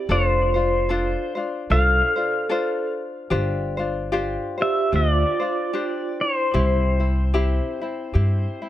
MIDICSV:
0, 0, Header, 1, 5, 480
1, 0, Start_track
1, 0, Key_signature, 0, "major"
1, 0, Tempo, 806127
1, 52, Time_signature, 4, 2, 24, 8
1, 5176, End_track
2, 0, Start_track
2, 0, Title_t, "Pedal steel guitar"
2, 0, Program_c, 0, 26
2, 0, Note_on_c, 0, 74, 92
2, 69, Note_on_c, 0, 72, 75
2, 90, Note_off_c, 0, 74, 0
2, 792, Note_off_c, 0, 72, 0
2, 1022, Note_on_c, 0, 77, 101
2, 1748, Note_off_c, 0, 77, 0
2, 2751, Note_on_c, 0, 76, 95
2, 2930, Note_off_c, 0, 76, 0
2, 2951, Note_on_c, 0, 74, 94
2, 3699, Note_on_c, 0, 72, 72
2, 3719, Note_off_c, 0, 74, 0
2, 5176, Note_off_c, 0, 72, 0
2, 5176, End_track
3, 0, Start_track
3, 0, Title_t, "Ukulele"
3, 0, Program_c, 1, 24
3, 55, Note_on_c, 1, 69, 70
3, 61, Note_on_c, 1, 62, 73
3, 62, Note_on_c, 1, 65, 78
3, 65, Note_on_c, 1, 72, 83
3, 315, Note_off_c, 1, 72, 0
3, 322, Note_on_c, 1, 72, 50
3, 324, Note_off_c, 1, 65, 0
3, 327, Note_off_c, 1, 62, 0
3, 329, Note_off_c, 1, 69, 0
3, 331, Note_on_c, 1, 65, 45
3, 334, Note_on_c, 1, 62, 46
3, 529, Note_off_c, 1, 72, 0
3, 530, Note_off_c, 1, 62, 0
3, 530, Note_on_c, 1, 69, 73
3, 532, Note_off_c, 1, 65, 0
3, 537, Note_on_c, 1, 62, 75
3, 539, Note_on_c, 1, 65, 82
3, 541, Note_on_c, 1, 72, 75
3, 797, Note_off_c, 1, 72, 0
3, 804, Note_on_c, 1, 72, 56
3, 806, Note_off_c, 1, 69, 0
3, 808, Note_off_c, 1, 65, 0
3, 810, Note_off_c, 1, 62, 0
3, 815, Note_on_c, 1, 65, 53
3, 818, Note_on_c, 1, 62, 49
3, 1010, Note_off_c, 1, 72, 0
3, 1012, Note_off_c, 1, 62, 0
3, 1012, Note_on_c, 1, 69, 50
3, 1016, Note_off_c, 1, 65, 0
3, 1019, Note_on_c, 1, 62, 57
3, 1022, Note_on_c, 1, 65, 59
3, 1025, Note_on_c, 1, 72, 58
3, 1277, Note_off_c, 1, 72, 0
3, 1285, Note_on_c, 1, 72, 54
3, 1287, Note_off_c, 1, 65, 0
3, 1287, Note_off_c, 1, 69, 0
3, 1289, Note_off_c, 1, 62, 0
3, 1294, Note_on_c, 1, 65, 42
3, 1296, Note_on_c, 1, 62, 43
3, 1480, Note_off_c, 1, 62, 0
3, 1485, Note_off_c, 1, 65, 0
3, 1485, Note_on_c, 1, 69, 80
3, 1487, Note_on_c, 1, 62, 81
3, 1491, Note_off_c, 1, 72, 0
3, 1492, Note_on_c, 1, 65, 75
3, 1497, Note_on_c, 1, 72, 89
3, 1964, Note_off_c, 1, 69, 0
3, 1966, Note_off_c, 1, 62, 0
3, 1966, Note_on_c, 1, 67, 84
3, 1969, Note_off_c, 1, 72, 0
3, 1969, Note_on_c, 1, 62, 94
3, 1970, Note_off_c, 1, 65, 0
3, 1972, Note_on_c, 1, 72, 85
3, 1973, Note_on_c, 1, 65, 85
3, 2238, Note_off_c, 1, 72, 0
3, 2244, Note_off_c, 1, 67, 0
3, 2245, Note_off_c, 1, 62, 0
3, 2245, Note_on_c, 1, 72, 57
3, 2247, Note_off_c, 1, 65, 0
3, 2256, Note_on_c, 1, 65, 54
3, 2260, Note_on_c, 1, 62, 53
3, 2447, Note_off_c, 1, 65, 0
3, 2449, Note_off_c, 1, 62, 0
3, 2451, Note_off_c, 1, 72, 0
3, 2453, Note_on_c, 1, 67, 87
3, 2454, Note_on_c, 1, 65, 86
3, 2456, Note_on_c, 1, 62, 77
3, 2461, Note_on_c, 1, 72, 97
3, 2718, Note_off_c, 1, 72, 0
3, 2725, Note_on_c, 1, 72, 47
3, 2727, Note_off_c, 1, 67, 0
3, 2728, Note_off_c, 1, 65, 0
3, 2729, Note_off_c, 1, 62, 0
3, 2735, Note_on_c, 1, 65, 46
3, 2737, Note_on_c, 1, 62, 40
3, 2927, Note_off_c, 1, 62, 0
3, 2930, Note_off_c, 1, 72, 0
3, 2931, Note_on_c, 1, 67, 57
3, 2932, Note_off_c, 1, 65, 0
3, 2935, Note_on_c, 1, 62, 56
3, 2940, Note_on_c, 1, 65, 56
3, 2940, Note_on_c, 1, 72, 62
3, 3206, Note_off_c, 1, 67, 0
3, 3206, Note_off_c, 1, 72, 0
3, 3208, Note_off_c, 1, 62, 0
3, 3211, Note_off_c, 1, 65, 0
3, 3213, Note_on_c, 1, 72, 50
3, 3221, Note_on_c, 1, 65, 44
3, 3226, Note_on_c, 1, 62, 38
3, 3407, Note_off_c, 1, 62, 0
3, 3411, Note_off_c, 1, 65, 0
3, 3414, Note_on_c, 1, 67, 75
3, 3415, Note_off_c, 1, 72, 0
3, 3415, Note_on_c, 1, 62, 84
3, 3421, Note_on_c, 1, 72, 81
3, 3890, Note_off_c, 1, 62, 0
3, 3892, Note_off_c, 1, 67, 0
3, 3892, Note_on_c, 1, 67, 68
3, 3893, Note_on_c, 1, 60, 82
3, 3897, Note_on_c, 1, 64, 76
3, 4159, Note_off_c, 1, 64, 0
3, 4164, Note_off_c, 1, 60, 0
3, 4166, Note_on_c, 1, 64, 40
3, 4167, Note_off_c, 1, 67, 0
3, 4171, Note_on_c, 1, 60, 42
3, 4365, Note_off_c, 1, 64, 0
3, 4366, Note_off_c, 1, 60, 0
3, 4369, Note_on_c, 1, 67, 82
3, 4372, Note_on_c, 1, 64, 85
3, 4373, Note_on_c, 1, 60, 81
3, 4645, Note_off_c, 1, 67, 0
3, 4647, Note_off_c, 1, 60, 0
3, 4647, Note_off_c, 1, 64, 0
3, 4654, Note_on_c, 1, 64, 50
3, 4661, Note_on_c, 1, 60, 44
3, 4840, Note_off_c, 1, 60, 0
3, 4844, Note_on_c, 1, 67, 61
3, 4845, Note_off_c, 1, 64, 0
3, 4848, Note_on_c, 1, 60, 61
3, 4852, Note_on_c, 1, 64, 60
3, 5123, Note_off_c, 1, 67, 0
3, 5124, Note_off_c, 1, 64, 0
3, 5125, Note_off_c, 1, 60, 0
3, 5131, Note_on_c, 1, 64, 46
3, 5137, Note_on_c, 1, 60, 39
3, 5176, Note_off_c, 1, 60, 0
3, 5176, Note_off_c, 1, 64, 0
3, 5176, Note_off_c, 1, 72, 0
3, 5176, End_track
4, 0, Start_track
4, 0, Title_t, "Vibraphone"
4, 0, Program_c, 2, 11
4, 61, Note_on_c, 2, 65, 58
4, 788, Note_off_c, 2, 65, 0
4, 1011, Note_on_c, 2, 69, 83
4, 1743, Note_off_c, 2, 69, 0
4, 2740, Note_on_c, 2, 67, 86
4, 2924, Note_off_c, 2, 67, 0
4, 2947, Note_on_c, 2, 65, 77
4, 3670, Note_off_c, 2, 65, 0
4, 3696, Note_on_c, 2, 64, 65
4, 5176, Note_off_c, 2, 64, 0
4, 5176, End_track
5, 0, Start_track
5, 0, Title_t, "Upright bass"
5, 0, Program_c, 3, 32
5, 53, Note_on_c, 3, 29, 89
5, 676, Note_off_c, 3, 29, 0
5, 1013, Note_on_c, 3, 36, 88
5, 1192, Note_off_c, 3, 36, 0
5, 1971, Note_on_c, 3, 31, 89
5, 2595, Note_off_c, 3, 31, 0
5, 2934, Note_on_c, 3, 38, 84
5, 3112, Note_off_c, 3, 38, 0
5, 3896, Note_on_c, 3, 36, 97
5, 4518, Note_off_c, 3, 36, 0
5, 4854, Note_on_c, 3, 43, 84
5, 5032, Note_off_c, 3, 43, 0
5, 5176, End_track
0, 0, End_of_file